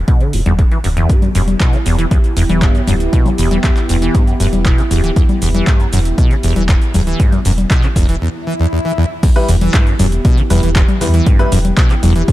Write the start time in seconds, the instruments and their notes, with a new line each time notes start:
0.08 acid bass B2, kick, closed hi-hat
0.21 acid bass D3, closed hi-hat
0.33 analog synth bass E1, acid bass E2, open hi-hat
0.46 analog synth bass E1, acid bass E2, closed hi-hat, low conga
0.59 acid bass E2, kick, closed hi-hat
0.71 acid bass E3, closed hi-hat
0.84 analog synth bass D1, acid bass F#2, open hi-hat
0.97 acid bass E2, closed hi-hat
1.09 acid bass G2, analog synth pad B3 E4 G4, kick, closed hi-hat, shaker
1.22 acid bass F#2, closed hi-hat, low conga, shaker
1.35 analog synth bass E1, acid bass F#2, open hi-hat, shaker
1.48 closed hi-hat, low conga, shaker
1.60 acid bass B2, kick, clap, closed hi-hat, shaker
1.73 acid bass D3, closed hi-hat, shaker
1.86 analog synth bass E1, acid bass E2, open hi-hat, shaker
1.98 acid bass E3, closed hi-hat, shaker
2.11 acid bass E2, kick, closed hi-hat, shaker
2.24 closed hi-hat, shaker
2.37 analog synth bass E1, acid bass E2, open hi-hat, shaker
2.49 analog synth bass E1, acid bass E3, closed hi-hat, low conga, shaker
2.62 acid bass G2, kick, clap, closed hi-hat, shaker
2.75 acid bass F#2, closed hi-hat, shaker
2.87 analog synth bass D1, acid bass F#2, open hi-hat, low conga, shaker
3.00 closed hi-hat, shaker
3.13 acid bass B2, kick, closed hi-hat, shaker
3.26 acid bass D3, closed hi-hat, low conga, shaker
3.38 analog synth bass E1, acid bass E2, open hi-hat, shaker
3.51 acid bass E3, closed hi-hat, low conga, shaker
3.64 acid bass E2, kick, clap, closed hi-hat, shaker
3.77 clap, closed hi-hat, shaker
3.89 analog synth bass E1, acid bass E2, open hi-hat, shaker
4.02 acid bass E3, closed hi-hat, shaker
4.15 acid bass G2, kick, closed hi-hat, shaker
4.27 acid bass F#2, closed hi-hat, shaker
4.40 analog synth bass E1, acid bass F#2, open hi-hat, shaker
4.53 analog synth bass E1, closed hi-hat, low conga, shaker
4.65 acid bass B2, kick, clap, closed hi-hat, shaker
4.78 acid bass D3, closed hi-hat, shaker
4.91 analog synth bass D1, acid bass E2, open hi-hat, shaker
5.04 acid bass E3, closed hi-hat, shaker
5.16 acid bass E2, kick, closed hi-hat, shaker
5.29 closed hi-hat, low conga, shaker
5.42 analog synth bass E1, acid bass E2, open hi-hat, shaker
5.54 acid bass E3, closed hi-hat, low conga, shaker
5.67 acid bass G2, kick, clap, closed hi-hat, shaker
5.80 acid bass F#2, closed hi-hat, shaker
5.93 analog synth bass E1, acid bass F#2, open hi-hat, shaker
6.05 closed hi-hat, shaker
6.18 acid bass B2, kick, closed hi-hat, shaker
6.31 acid bass D3, closed hi-hat, shaker
6.43 analog synth bass E1, acid bass E2, open hi-hat, shaker
6.56 analog synth bass E1, acid bass E3, closed hi-hat, low conga, shaker
6.69 acid bass E2, kick, clap, closed hi-hat, shaker
6.82 closed hi-hat, shaker
6.94 analog synth bass D1, acid bass E2, open hi-hat, low conga, shaker
7.07 acid bass E3, closed hi-hat, shaker
7.20 acid bass G2, kick, closed hi-hat, shaker
7.32 acid bass F#2, closed hi-hat, low conga, shaker
7.45 analog synth bass E1, acid bass F#2, open hi-hat, shaker
7.58 closed hi-hat, low conga, shaker
7.71 acid bass B2, kick, clap, closed hi-hat, shaker
7.83 acid bass D3, clap, closed hi-hat, shaker
7.96 analog synth bass E1, acid bass E2, kick, open hi-hat, shaker
8.09 acid bass E3, closed hi-hat, shaker
8.21 acid bass E2, swell
8.47 acid bass E3
8.60 acid bass E2
8.72 acid bass E2
8.85 acid bass E3
8.98 acid bass E2
9.23 acid bass E2, analog synth pad B3 E4 G4, kick, closed hi-hat, crash, shaker
9.36 grand piano G3 E4 B4, closed hi-hat, shaker
9.48 analog synth bass E1, acid bass E2, open hi-hat, shaker
9.61 acid bass E3, closed hi-hat, low conga, shaker
9.74 acid bass G2, kick, clap, closed hi-hat, shaker
9.87 acid bass F#2, closed hi-hat, shaker
9.99 analog synth bass E1, acid bass F#2, open hi-hat, low conga, shaker
10.12 closed hi-hat, shaker
10.25 acid bass B2, kick, closed hi-hat, shaker
10.38 acid bass D3, closed hi-hat, shaker
10.50 analog synth bass E1, acid bass E2, grand piano G3 E4 B4, open hi-hat, low conga, shaker
10.63 analog synth bass E1, acid bass E3, closed hi-hat, shaker
10.76 acid bass E2, kick, clap, closed hi-hat, shaker
10.88 closed hi-hat, low conga, shaker
11.01 acid bass E2, analog synth bass E2, grand piano G3 E4 B4, open hi-hat, shaker
11.14 acid bass E3, closed hi-hat, shaker
11.27 acid bass G2, kick, closed hi-hat, shaker
11.39 acid bass F#2, grand piano G3 E4 B4, closed hi-hat, shaker
11.52 analog synth bass E1, acid bass F#2, open hi-hat, shaker
11.65 closed hi-hat, low conga, shaker
11.77 acid bass B2, kick, clap, closed hi-hat, shaker
11.90 acid bass D3, clap, closed hi-hat, shaker
12.03 analog synth bass E1, acid bass E2, open hi-hat, low conga, shaker
12.16 acid bass E3, closed hi-hat, shaker
12.28 acid bass E2, kick, closed hi-hat, shaker